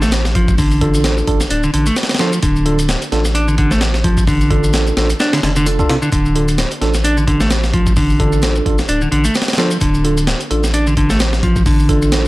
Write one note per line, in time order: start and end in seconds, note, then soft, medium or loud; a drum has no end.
0.00 1.23 A1 medium
0.00 0.11 A3 medium
0.00 snare medium
0.00 shaker medium
0.12 snare loud
0.12 closed hi-hat medium
0.12 shaker medium
0.25 snare medium
0.25 shaker soft
0.35 0.57 F3 medium
0.35 kick loud
0.35 closed hi-hat medium
0.48 kick loud
0.48 shaker medium
0.58 1.04 D3 medium
0.58 kick loud
0.58 open hi-hat medium
0.58 shaker medium
0.71 shaker soft
0.81 1.25 D4 medium
0.81 1.25 F4 medium
0.81 1.25 A4 loud
0.81 kick loud
0.81 closed hi-hat medium
0.94 shaker medium
1.04 snare loud
1.04 closed hi-hat medium
1.04 shaker medium
1.17 shaker soft
1.27 1.45 A1 medium
1.27 1.39 D4 medium
1.27 1.39 F4 medium
1.27 1.39 A4 medium
1.27 kick medium
1.27 closed hi-hat medium
1.40 snare medium
1.40 shaker medium
1.50 1.68 D1 loud
1.50 1.62 D4 medium
1.50 closed hi-hat medium
1.50 shaker medium
1.63 1.72 D3 medium
1.63 shaker soft
1.74 1.91 A1 medium
1.74 1.85 D3 medium
1.74 closed hi-hat medium
1.86 1.95 A3 medium
1.86 closed hi-hat soft
1.86 shaker medium
1.96 snare medium
1.96 closed hi-hat medium
1.96 shaker medium
2.03 snare medium
2.03 closed hi-hat medium
2.09 snare medium
2.09 closed hi-hat medium
2.09 shaker soft
2.15 snare medium
2.15 closed hi-hat medium
2.19 2.42 F3 medium
2.19 2.31 D4 medium
2.19 2.31 F4 medium
2.19 2.31 A4 loud
2.19 snare loud
2.19 closed hi-hat medium
2.33 shaker medium
2.43 2.96 D1 loud
2.43 2.88 D3 medium
2.43 kick loud
2.43 closed hi-hat medium
2.43 shaker medium
2.56 shaker soft
2.66 2.77 D4 medium
2.66 2.77 F4 medium
2.66 2.77 A4 loud
2.66 closed hi-hat medium
2.79 closed hi-hat soft
2.79 shaker medium
2.89 snare loud
2.89 closed hi-hat medium
2.89 shaker medium
3.02 closed hi-hat soft
3.02 shaker soft
3.12 4.92 A1 medium
3.12 3.23 D4 loud
3.12 3.23 F4 medium
3.12 3.23 A4 loud
3.12 snare soft
3.12 closed hi-hat medium
3.25 snare soft
3.25 shaker medium
3.35 3.47 D4 medium
3.35 closed hi-hat medium
3.35 shaker medium
3.48 3.57 D3 medium
3.48 shaker soft
3.58 3.70 D3 loud
3.58 kick medium
3.58 closed hi-hat medium
3.71 3.80 A3 medium
3.71 snare medium
3.71 shaker medium
3.81 snare loud
3.81 closed hi-hat medium
3.81 shaker medium
3.94 snare medium
3.94 shaker soft
4.04 4.26 F3 medium
4.04 kick medium
4.04 closed hi-hat medium
4.17 kick medium
4.17 shaker medium
4.27 4.73 D3 medium
4.27 kick loud
4.27 open hi-hat medium
4.27 shaker medium
4.41 shaker soft
4.50 4.94 D4 loud
4.50 4.94 F4 medium
4.50 4.94 A4 loud
4.50 kick loud
4.50 closed hi-hat medium
4.64 shaker medium
4.73 snare loud
4.73 closed hi-hat loud
4.73 shaker medium
4.87 shaker soft
4.97 5.14 A1 medium
4.97 5.08 D4 medium
4.97 5.08 F4 medium
4.97 5.08 A4 medium
4.97 snare loud
4.97 closed hi-hat medium
5.10 closed hi-hat soft
5.10 shaker medium
5.20 5.32 D4 medium
5.20 snare loud
5.20 closed hi-hat medium
5.20 shaker medium
5.33 5.42 D3 medium
5.33 snare loud
5.33 closed hi-hat medium
5.33 shaker soft
5.43 5.84 F1 medium
5.43 5.50 D3 medium
5.43 snare loud
5.43 closed hi-hat medium
5.56 5.66 D3 loud
5.56 closed hi-hat soft
5.56 shaker medium
5.66 5.77 D4 medium
5.66 5.77 F4 medium
5.66 5.77 A4 medium
5.66 closed hi-hat medium
5.66 shaker medium
5.79 5.94 D4 medium
5.79 5.94 F4 medium
5.79 5.94 A4 loud
5.79 kick loud
5.79 shaker soft
5.89 5.96 C3 medium
5.89 snare loud
5.89 closed hi-hat medium
6.02 6.11 D3 loud
6.02 shaker medium
6.12 6.65 D1 loud
6.12 6.57 D3 medium
6.12 kick loud
6.12 closed hi-hat medium
6.12 shaker medium
6.25 shaker soft
6.36 6.47 D4 medium
6.36 6.47 F4 medium
6.36 6.47 A4 medium
6.36 closed hi-hat medium
6.48 closed hi-hat soft
6.48 shaker medium
6.58 snare loud
6.58 closed hi-hat medium
6.58 shaker soft
6.71 closed hi-hat soft
6.71 shaker soft
6.81 8.61 A1 medium
6.81 6.93 D4 loud
6.81 6.93 F4 medium
6.81 6.93 A4 loud
6.81 snare soft
6.81 closed hi-hat medium
6.94 snare soft
6.94 shaker medium
7.04 7.16 D4 medium
7.04 closed hi-hat medium
7.04 shaker soft
7.17 7.26 D3 medium
7.17 shaker soft
7.27 7.39 D3 medium
7.27 kick loud
7.27 closed hi-hat medium
7.40 7.49 A3 medium
7.40 snare medium
7.40 shaker medium
7.51 snare loud
7.51 closed hi-hat medium
7.51 shaker medium
7.63 snare medium
7.63 shaker soft
7.74 7.96 F3 medium
7.74 kick loud
7.74 closed hi-hat medium
7.86 kick medium
7.86 shaker medium
7.96 8.42 D3 medium
7.96 kick loud
7.96 open hi-hat medium
7.96 shaker medium
8.09 shaker soft
8.20 8.64 D4 medium
8.20 8.64 F4 medium
8.20 8.63 A4 loud
8.20 kick loud
8.20 closed hi-hat medium
8.32 shaker medium
8.42 snare loud
8.42 closed hi-hat medium
8.42 shaker soft
8.56 shaker soft
8.65 8.83 A1 medium
8.65 8.77 D4 medium
8.65 8.77 F4 medium
8.65 8.77 A4 medium
8.65 kick medium
8.65 closed hi-hat medium
8.78 snare medium
8.78 shaker medium
8.88 9.06 D1 loud
8.88 9.01 D4 medium
8.88 closed hi-hat medium
8.88 shaker soft
9.01 9.10 D3 medium
9.01 shaker soft
9.12 9.29 A1 medium
9.12 9.24 D3 loud
9.12 closed hi-hat medium
9.24 9.34 A3 medium
9.24 closed hi-hat soft
9.24 shaker medium
9.35 snare medium
9.35 closed hi-hat medium
9.35 shaker medium
9.42 snare medium
9.42 closed hi-hat medium
9.48 snare medium
9.48 closed hi-hat medium
9.48 shaker soft
9.53 snare medium
9.53 closed hi-hat medium
9.58 9.80 F3 medium
9.58 9.69 D4 medium
9.58 9.69 F4 medium
9.58 9.69 A4 loud
9.58 snare loud
9.58 closed hi-hat medium
9.71 shaker medium
9.81 10.34 D1 loud
9.81 10.26 D3 medium
9.81 kick loud
9.81 closed hi-hat medium
9.81 shaker medium
9.94 shaker soft
10.04 10.16 D4 medium
10.04 10.16 F4 medium
10.04 10.16 A4 medium
10.04 closed hi-hat medium
10.17 closed hi-hat soft
10.17 shaker medium
10.27 snare loud
10.27 closed hi-hat medium
10.27 shaker medium
10.41 closed hi-hat soft
10.41 shaker soft
10.51 12.28 A1 medium
10.51 10.62 D4 loud
10.51 10.62 F4 medium
10.51 10.62 A4 loud
10.51 closed hi-hat medium
10.64 snare soft
10.64 shaker medium
10.74 10.86 D4 medium
10.74 closed hi-hat medium
10.74 shaker medium
10.87 10.96 D3 medium
10.87 shaker soft
10.97 11.09 D3 loud
10.97 kick medium
10.97 closed hi-hat medium
11.10 11.19 A3 medium
11.10 snare medium
11.10 shaker medium
11.20 snare loud
11.20 closed hi-hat medium
11.20 shaker medium
11.33 snare medium
11.33 shaker soft
11.43 11.65 F3 medium
11.43 kick loud
11.43 closed hi-hat medium
11.56 kick medium
11.56 shaker medium
11.66 12.11 D3 medium
11.66 kick loud
11.66 open hi-hat medium
11.66 shaker medium
11.79 shaker soft
11.89 12.28 D4 medium
11.89 12.28 F4 medium
11.89 12.28 A4 loud
11.89 kick loud
11.89 closed hi-hat medium
12.02 shaker medium
12.12 snare loud
12.12 closed hi-hat medium
12.12 shaker medium